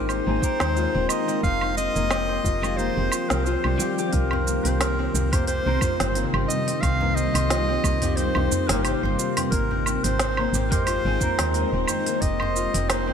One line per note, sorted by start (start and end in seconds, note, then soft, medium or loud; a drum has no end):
0.00 0.21 G#1 medium
0.00 0.23 D#3 medium
0.00 0.23 G#3 medium
0.00 1.41 G#3 medium
0.00 0.26 A#3 medium
0.00 0.23 C4 medium
0.00 1.41 D#4 medium
0.00 0.77 F4 medium
0.00 0.24 G4 medium
0.00 0.42 G4 medium
0.00 1.41 A#4 medium
0.00 0.61 C5 medium
0.00 1.41 C5 medium
0.09 0.94 C4 medium
0.09 1.11 C5 loud
0.09 cabasa soft
0.09 low woodblock medium
0.27 0.39 G#1 medium
0.27 0.39 D#3 medium
0.27 0.39 G#3 medium
0.27 1.10 A#3 medium
0.27 0.39 C4 medium
0.27 0.40 G#4 medium
0.41 1.41 D#3 medium
0.41 1.41 G#3 medium
0.41 1.42 C4 medium
0.41 2.11 G4 medium
0.41 1.43 A#4 loud
0.41 kick loud
0.41 cabasa medium
0.60 0.87 D#2 medium
0.60 2.29 C5 medium
0.60 snare medium
0.60 cabasa soft
0.60 low woodblock medium
0.77 2.44 F4 medium
0.77 cabasa soft
0.95 1.07 D#1 loud
0.95 1.27 C4 loud
1.09 1.95 A#3 medium
1.09 1.43 D#5 loud
1.09 cabasa medium
1.09 low woodblock medium
1.28 1.43 C4 loud
1.28 cabasa soft
1.43 1.89 F1 medium
1.43 4.11 F3 medium
1.43 1.61 C4 medium
1.43 9.49 C4 medium
1.43 4.11 G4 medium
1.43 1.75 F5 loud
1.43 kick loud
1.43 cabasa soft
1.61 1.77 C4 medium
1.61 low woodblock medium
1.77 2.62 C4 medium
1.77 2.79 D#5 loud
1.77 cabasa medium
1.96 2.40 F1 medium
1.96 2.78 A#3 medium
1.96 cabasa soft
2.11 3.31 G4 medium
2.11 snare medium
2.11 cabasa soft
2.11 low woodblock medium
2.29 4.27 C5 medium
2.44 2.90 F1 loud
2.44 3.12 F4 medium
2.44 kick loud
2.44 cabasa medium
2.62 3.08 D#3 medium
2.62 3.08 G#3 medium
2.62 2.97 C4 loud
2.62 3.09 C4 medium
2.62 3.09 F4 medium
2.62 cabasa soft
2.62 low woodblock medium
2.77 4.46 A#3 medium
2.77 3.31 C5 loud
2.77 cabasa soft
2.97 3.09 F1 medium
2.97 3.80 C4 medium
3.12 3.46 F4 medium
3.12 cabasa medium
3.12 low woodblock medium
3.29 3.57 C2 medium
3.29 3.98 G4 medium
3.29 3.47 A#4 medium
3.29 snare medium
3.29 cabasa soft
3.45 4.13 F4 loud
3.45 3.98 C5 loud
3.45 cabasa soft
3.64 3.77 C2 loud
3.64 4.18 G3 loud
3.64 low woodblock medium
3.78 5.28 D#3 medium
3.78 5.28 A#3 medium
3.78 5.29 C4 medium
3.78 4.32 C4 medium
3.78 5.29 G4 loud
3.78 cabasa medium
3.98 5.47 G4 loud
3.98 cabasa soft
4.07 4.14 C5 medium
4.12 4.59 C2 medium
4.12 9.49 C3 medium
4.12 9.49 G3 medium
4.12 9.49 D#4 medium
4.12 5.81 F4 medium
4.12 4.65 A#4 medium
4.12 kick loud
4.12 open hi-hat soft
4.12 cabasa soft
4.31 4.65 C4 loud
4.31 djembe tone medium
4.31 low woodblock medium
4.47 5.32 A#3 medium
4.47 cabasa medium
4.64 5.09 C2 medium
4.64 4.80 C4 medium
4.64 4.79 C5 medium
4.64 open hi-hat medium
4.64 djembe slap soft
4.64 cabasa soft
4.80 4.98 C4 medium
4.80 5.34 A#4 loud
4.80 snare medium
4.80 open hi-hat soft
4.80 cabasa soft
4.80 low woodblock medium
4.99 5.14 C4 medium
5.14 5.60 C2 loud
5.14 5.99 C4 medium
5.14 djembe slap medium
5.14 cabasa medium
5.32 5.62 D#3 medium
5.32 5.62 A#3 medium
5.32 6.15 A#3 medium
5.32 5.62 C4 medium
5.32 5.63 G4 medium
5.32 5.47 C5 medium
5.32 kick loud
5.32 open hi-hat soft
5.32 djembe bass medium
5.32 cabasa soft
5.32 low woodblock medium
5.47 7.15 G4 medium
5.47 6.19 C5 loud
5.47 open hi-hat soft
5.47 cabasa soft
5.65 5.78 C2 loud
5.65 5.78 D#3 medium
5.65 5.78 A#3 medium
5.65 5.78 C4 medium
5.65 5.79 A#4 medium
5.65 7.34 C5 loud
5.81 7.98 D#3 medium
5.81 7.98 A#3 medium
5.81 7.99 C4 medium
5.81 7.50 F4 medium
5.81 7.99 C5 medium
5.81 kick loud
5.81 djembe tone medium
5.81 djembe bass medium
5.81 cabasa medium
5.81 low woodblock medium
5.99 6.26 G1 medium
5.99 6.33 C4 medium
5.99 snare medium
5.99 open hi-hat medium
5.99 cabasa soft
6.15 7.00 A#3 medium
6.15 open hi-hat soft
6.15 cabasa soft
6.33 6.46 G1 medium
6.33 6.48 C4 loud
6.33 low woodblock medium
6.48 6.67 C4 medium
6.48 6.83 D#5 loud
6.48 djembe tone soft
6.48 cabasa medium
6.67 6.82 C4 medium
6.67 open hi-hat medium
6.67 cabasa soft
6.81 7.29 C2 loud
6.81 7.67 C4 medium
6.81 7.17 F5 loud
6.81 kick loud
6.81 open hi-hat soft
6.81 cabasa soft
6.81 low woodblock medium
7.01 7.83 A#3 medium
7.01 djembe tone medium
7.15 8.84 G4 medium
7.15 8.18 D#5 loud
7.15 cabasa medium
7.34 7.79 C2 medium
7.34 9.03 C5 loud
7.34 open hi-hat medium
7.34 djembe slap medium
7.34 cabasa soft
7.34 low woodblock medium
7.50 9.18 F4 medium
7.50 snare medium
7.50 open hi-hat soft
7.50 cabasa soft
7.68 8.02 C4 medium
7.83 8.30 C2 loud
7.83 8.69 A#3 medium
7.83 kick loud
7.83 djembe slap medium
7.83 cabasa medium
7.83 low woodblock medium
8.02 8.48 D#3 medium
8.02 8.48 A#3 medium
8.02 8.17 C4 loud
8.02 8.48 C4 medium
8.02 8.48 G4 medium
8.02 open hi-hat medium
8.02 djembe bass medium
8.02 cabasa soft
8.16 8.35 C4 medium
8.16 8.69 C5 loud
8.16 open hi-hat soft
8.16 cabasa soft
8.35 8.48 C2 loud
8.35 8.51 C4 medium
8.35 djembe tone medium
8.35 low woodblock medium
8.51 9.37 C4 medium
8.51 djembe slap medium
8.51 djembe bass medium
8.51 cabasa medium
8.68 8.95 G1 medium
8.68 9.50 D#3 medium
8.68 9.53 A#3 medium
8.68 9.51 A#3 medium
8.68 9.51 C4 medium
8.68 8.85 A#4 medium
8.68 snare medium
8.68 open hi-hat medium
8.68 cabasa soft
8.72 9.52 G4 medium
8.83 10.54 G4 medium
8.83 9.36 C5 medium
8.83 open hi-hat soft
8.83 cabasa soft
8.83 low woodblock medium
9.03 9.16 G1 medium
9.03 10.72 C5 loud
9.03 djembe slap medium
9.19 10.87 F4 medium
9.19 cabasa medium
9.37 9.71 C4 loud
9.37 open hi-hat medium
9.37 djembe tone medium
9.37 cabasa soft
9.37 low woodblock medium
9.51 9.98 G#1 loud
9.51 12.20 G#3 medium
9.51 10.38 A#3 medium
9.51 12.20 D#4 medium
9.51 10.06 A#4 loud
9.51 12.20 A#4 medium
9.51 12.20 C5 medium
9.51 kick loud
9.51 open hi-hat soft
9.51 cabasa soft
9.71 9.87 C4 loud
9.71 djembe tone medium
9.86 10.05 C4 medium
9.86 cabasa medium
9.86 low woodblock medium
10.04 10.48 G#1 medium
10.04 10.20 C4 medium
10.04 10.73 C5 loud
10.04 open hi-hat medium
10.04 djembe slap medium
10.04 cabasa soft
10.19 11.05 C4 medium
10.19 snare medium
10.19 open hi-hat soft
10.19 cabasa soft
10.37 11.21 A#3 medium
10.37 low woodblock medium
10.53 10.99 G#1 loud
10.53 12.22 G4 medium
10.53 djembe slap medium
10.53 cabasa medium
10.71 11.01 D#3 medium
10.71 11.01 G#3 medium
10.71 11.02 C4 medium
10.71 11.02 G4 medium
10.71 10.84 A#4 medium
10.71 12.40 C5 loud
10.71 kick loud
10.71 open hi-hat medium
10.71 djembe bass medium
10.71 cabasa soft
10.85 12.56 F4 medium
10.85 11.57 C5 loud
10.85 open hi-hat soft
10.85 cabasa soft
10.85 low woodblock medium
11.05 11.17 G#1 loud
11.05 11.17 D#3 medium
11.05 11.18 G#3 medium
11.05 11.39 C4 medium
11.05 11.18 C4 medium
11.05 11.18 G#4 medium
11.19 12.20 D#3 medium
11.19 12.20 G#3 medium
11.19 12.06 A#3 medium
11.19 12.21 C4 medium
11.19 12.22 A#4 loud
11.19 kick loud
11.19 djembe tone medium
11.19 djembe bass medium
11.19 cabasa medium
11.39 11.65 D#2 medium
11.39 11.54 C4 loud
11.39 snare medium
11.39 open hi-hat medium
11.39 cabasa soft
11.39 low woodblock medium
11.54 11.73 C4 medium
11.54 open hi-hat soft
11.54 cabasa soft
11.72 11.85 D#1 medium
11.72 11.88 C4 medium
11.87 12.73 C4 medium
11.87 12.23 C5 medium
11.87 djembe tone soft
11.87 cabasa medium
11.87 low woodblock medium
12.06 12.89 A#3 medium
12.06 open hi-hat medium
12.06 cabasa soft
12.21 12.68 F1 loud
12.21 13.13 F3 medium
12.21 13.13 C4 medium
12.21 13.13 G4 medium
12.21 12.91 D#5 loud
12.21 kick loud
12.21 open hi-hat soft
12.21 cabasa soft
12.40 13.13 C5 loud
12.40 djembe tone medium
12.40 low woodblock medium
12.56 13.13 F4 medium
12.56 cabasa medium
12.74 13.13 F1 medium
12.74 13.07 C4 loud
12.74 open hi-hat medium
12.74 djembe slap medium
12.74 cabasa soft
12.89 13.13 A#3 medium
12.89 13.13 C5 medium
12.89 snare medium
12.89 open hi-hat soft
12.89 cabasa soft
12.89 low woodblock medium
13.07 13.13 C4 medium